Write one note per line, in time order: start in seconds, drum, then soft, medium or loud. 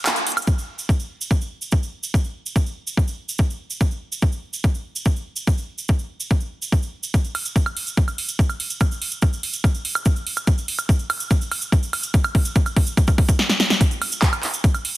0.06 clap loud
0.06 closed hi-hat loud
0.06 ride medium
0.06 cabasa medium
0.06 high woodblock soft
0.16 closed hi-hat medium
0.16 cabasa soft
0.27 closed hi-hat medium
0.27 open hi-hat loud
0.32 closed hi-hat medium
0.37 closed hi-hat medium
0.37 cabasa medium
0.37 high woodblock medium
0.42 closed hi-hat medium
0.47 kick loud
0.47 cabasa medium
0.58 cabasa soft
0.79 cabasa medium
0.89 kick loud
0.89 cabasa medium
1.00 cabasa soft
1.21 cabasa medium
1.31 kick loud
1.31 cabasa medium
1.41 cabasa soft
1.62 cabasa medium
1.72 kick loud
1.72 cabasa medium
1.83 cabasa soft
2.03 cabasa medium
2.14 kick loud
2.14 cabasa medium
2.24 cabasa soft
2.46 cabasa medium
2.56 kick loud
2.56 cabasa medium
2.66 cabasa soft
2.87 cabasa medium
2.97 kick loud
2.97 cabasa medium
3.08 cabasa soft
3.29 cabasa medium
3.38 kick loud
3.38 cabasa medium
3.50 cabasa soft
3.70 cabasa medium
3.81 kick loud
3.81 cabasa medium
3.91 cabasa soft
4.12 cabasa medium
4.22 kick loud
4.22 cabasa medium
4.32 cabasa soft
4.53 cabasa medium
4.64 kick loud
4.64 cabasa medium
4.74 cabasa soft
4.96 cabasa medium
5.05 kick loud
5.05 cabasa medium
5.16 cabasa soft
5.36 cabasa medium
5.47 kick loud
5.47 cabasa medium
5.58 cabasa soft
5.78 cabasa medium
5.88 kick loud
5.88 cabasa medium
5.99 cabasa soft
6.20 cabasa medium
6.31 kick loud
6.31 cabasa medium
6.40 cabasa soft
6.62 cabasa medium
6.72 kick loud
6.72 cabasa medium
6.82 cabasa soft
7.03 cabasa medium
7.14 kick loud
7.14 closed hi-hat medium
7.14 cabasa medium
7.24 closed hi-hat soft
7.24 cabasa soft
7.35 open hi-hat loud
7.35 high woodblock soft
7.45 closed hi-hat medium
7.45 cabasa medium
7.56 kick loud
7.56 closed hi-hat medium
7.56 cabasa medium
7.66 closed hi-hat soft
7.66 cabasa soft
7.66 high woodblock medium
7.77 open hi-hat loud
7.87 closed hi-hat medium
7.87 cabasa medium
7.97 kick loud
7.97 closed hi-hat medium
7.97 cabasa medium
8.08 closed hi-hat soft
8.08 cabasa soft
8.08 high woodblock soft
8.18 open hi-hat loud
8.29 closed hi-hat medium
8.29 cabasa medium
8.39 kick loud
8.39 closed hi-hat medium
8.39 cabasa medium
8.49 closed hi-hat soft
8.49 cabasa soft
8.49 high woodblock soft
8.60 open hi-hat loud
8.70 closed hi-hat medium
8.70 cabasa medium
8.81 kick loud
8.81 closed hi-hat medium
8.81 cabasa medium
8.81 high woodblock medium
8.91 closed hi-hat soft
8.91 cabasa soft
9.02 open hi-hat loud
9.11 closed hi-hat medium
9.11 cabasa medium
9.22 kick loud
9.22 closed hi-hat medium
9.22 cabasa medium
9.22 high woodblock soft
9.33 closed hi-hat soft
9.33 cabasa soft
9.43 open hi-hat loud
9.53 closed hi-hat medium
9.53 cabasa medium
9.64 kick loud
9.64 closed hi-hat medium
9.64 cabasa medium
9.64 high woodblock soft
9.74 closed hi-hat soft
9.74 cabasa soft
9.85 open hi-hat loud
9.95 closed hi-hat medium
9.95 cabasa medium
9.95 high woodblock medium
10.05 kick loud
10.05 closed hi-hat medium
10.05 cabasa medium
10.16 closed hi-hat soft
10.16 cabasa soft
10.27 open hi-hat loud
10.37 closed hi-hat medium
10.37 cabasa medium
10.37 high woodblock soft
10.47 kick loud
10.47 closed hi-hat medium
10.47 cabasa medium
10.58 closed hi-hat soft
10.58 cabasa soft
10.68 open hi-hat loud
10.78 closed hi-hat medium
10.78 cabasa medium
10.78 high woodblock soft
10.89 kick loud
10.89 closed hi-hat soft
10.89 cabasa medium
10.99 closed hi-hat soft
10.99 cabasa soft
11.10 open hi-hat loud
11.10 high woodblock medium
11.20 closed hi-hat medium
11.20 cabasa medium
11.31 kick loud
11.31 closed hi-hat medium
11.31 cabasa medium
11.41 closed hi-hat soft
11.41 cabasa soft
11.52 open hi-hat loud
11.52 high woodblock soft
11.62 closed hi-hat medium
11.62 cabasa medium
11.72 kick loud
11.72 closed hi-hat medium
11.72 cabasa medium
11.83 closed hi-hat soft
11.83 cabasa soft
11.93 open hi-hat loud
11.93 high woodblock soft
12.03 closed hi-hat medium
12.03 cabasa medium
12.14 kick loud
12.14 closed hi-hat medium
12.14 cabasa medium
12.24 closed hi-hat soft
12.24 cabasa soft
12.24 high woodblock medium
12.35 kick loud
12.35 open hi-hat loud
12.45 closed hi-hat medium
12.45 cabasa medium
12.56 kick loud
12.56 closed hi-hat medium
12.56 cabasa medium
12.66 closed hi-hat soft
12.66 cabasa soft
12.66 high woodblock soft
12.77 kick loud
12.77 open hi-hat loud
12.87 closed hi-hat medium
12.87 cabasa medium
12.97 kick loud
12.97 closed hi-hat medium
12.97 cabasa medium
13.07 kick medium
13.07 closed hi-hat soft
13.07 cabasa soft
13.07 high woodblock soft
13.18 kick loud
13.18 open hi-hat loud
13.29 kick medium
13.29 closed hi-hat medium
13.29 cabasa medium
13.39 snare medium
13.49 snare medium
13.60 snare medium
13.70 snare medium
13.81 kick loud
13.81 closed hi-hat loud
13.81 cabasa medium
13.91 closed hi-hat soft
13.91 cabasa soft
14.02 open hi-hat loud
14.02 high woodblock soft
14.12 closed hi-hat soft
14.12 cabasa medium
14.22 kick loud
14.22 clap loud
14.22 closed hi-hat loud
14.22 cabasa medium
14.33 closed hi-hat soft
14.33 cabasa soft
14.33 high woodblock medium
14.43 clap soft
14.43 open hi-hat loud
14.54 closed hi-hat soft
14.54 cabasa medium
14.64 kick loud
14.64 closed hi-hat medium
14.64 cabasa medium
14.74 closed hi-hat soft
14.74 cabasa soft
14.74 high woodblock soft
14.85 open hi-hat loud